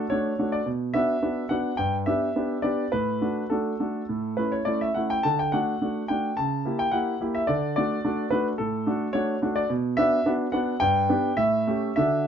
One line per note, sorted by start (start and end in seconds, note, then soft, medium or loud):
0.00 0.11 A4 medium
0.10 0.31 A3 soft
0.10 0.31 D4 soft
0.10 0.31 F#4 soft
0.10 0.48 C#5 medium
0.39 0.59 A3 soft
0.39 0.59 D4 soft
0.39 0.59 F#4 soft
0.52 0.66 D5 medium
0.66 0.93 B2 soft
0.94 1.14 B3 soft
0.94 1.15 D4 soft
0.94 1.15 F#4 soft
0.94 1.50 E5 medium
1.22 1.43 B3 soft
1.22 1.43 D4 soft
1.22 1.43 F#4 soft
1.49 1.71 B3 soft
1.49 1.71 D4 soft
1.49 1.71 F#4 soft
1.49 1.75 F#5 medium
1.77 2.06 G2 soft
1.77 1.95 G5 medium
2.06 2.27 B3 soft
2.06 2.28 D4 soft
2.06 2.28 G4 soft
2.06 2.63 E5 medium
2.36 2.56 B3 soft
2.36 2.56 D4 soft
2.36 2.57 G4 soft
2.62 2.84 B3 soft
2.62 2.84 D4 soft
2.62 2.85 G4 soft
2.62 2.92 D5 medium
2.92 3.21 A2 soft
2.92 3.46 B4 medium
3.21 3.42 A3 soft
3.21 3.42 D4 soft
3.21 3.43 F#4 soft
3.50 3.72 A3 soft
3.50 3.72 D4 soft
3.50 3.72 F#4 soft
3.50 4.34 A4 soft
3.80 4.01 A3 soft
3.80 4.01 D4 soft
3.80 4.01 F#4 soft
4.09 4.37 A2 soft
4.37 4.59 A3 soft
4.37 4.59 C#4 soft
4.37 4.59 E4 soft
4.37 4.52 B4 medium
4.52 4.67 C#5 medium
4.65 4.87 A3 soft
4.65 4.88 C#4 soft
4.65 4.88 E4 soft
4.65 4.80 D5 medium
4.81 4.96 E5 medium
4.94 5.17 A3 soft
4.94 5.17 C#4 soft
4.94 5.17 E4 soft
4.94 5.10 F#5 medium
5.10 5.25 G5 medium
5.23 5.52 D3 soft
5.23 5.38 A5 medium
5.39 5.53 G5 medium
5.52 5.73 A3 soft
5.52 5.74 D4 soft
5.52 5.74 F#4 soft
5.52 6.09 F#5 medium
5.82 6.02 A3 soft
5.82 6.02 D4 soft
5.82 6.02 F#4 soft
6.08 6.30 A3 soft
6.08 6.30 D4 soft
6.08 6.30 F#4 soft
6.08 6.37 G5 medium
6.37 6.65 C#3 soft
6.37 6.79 A5 medium
6.65 6.85 A#3 soft
6.65 6.85 E4 soft
6.65 6.86 G4 soft
6.79 6.93 G5 medium
6.91 7.13 A#3 soft
6.91 7.13 E4 soft
6.91 7.13 G4 soft
6.91 7.17 F#5 medium
7.21 7.41 A#3 soft
7.21 7.41 E4 soft
7.21 7.41 G4 soft
7.35 7.48 E5 medium
7.47 7.75 D3 soft
7.47 7.73 D5 medium
7.76 7.97 A3 soft
7.76 7.97 D4 soft
7.76 7.97 F#4 soft
7.76 8.27 D5 medium
8.05 8.24 A3 soft
8.05 8.24 D4 soft
8.05 8.25 F#4 soft
8.30 8.51 A3 soft
8.30 8.51 D4 soft
8.30 8.52 F#4 soft
8.30 8.47 B4 medium
8.58 8.86 A2 soft
8.58 9.10 A4 medium
8.87 9.07 A3 soft
8.87 9.07 D4 soft
8.87 9.07 F#4 soft
9.13 9.34 A3 soft
9.13 9.34 D4 soft
9.13 9.35 F#4 soft
9.13 9.38 C#5 medium
9.42 9.62 A3 soft
9.42 9.62 D4 soft
9.42 9.62 F#4 soft
9.56 9.69 D5 medium
9.70 9.96 B2 medium
9.97 10.18 B3 soft
9.97 10.18 D4 soft
9.97 10.18 F#4 soft
9.97 10.30 E5 medium
10.26 10.45 B3 soft
10.26 10.46 D4 soft
10.26 10.46 F#4 soft
10.52 10.73 B3 soft
10.52 10.73 D4 soft
10.52 10.74 F#4 soft
10.52 10.80 F#5 medium
10.80 11.08 G2 medium
10.80 11.38 G5 medium
11.09 11.30 B3 soft
11.09 11.30 D4 soft
11.09 11.31 G4 soft
11.37 11.66 A2 medium
11.37 11.93 E5 medium
11.67 11.89 A3 soft
11.67 11.89 C#4 soft
11.67 11.90 G4 soft
11.96 12.27 D3 soft
11.96 12.27 D4 soft
11.96 12.27 F#4 soft
11.96 12.27 E5 medium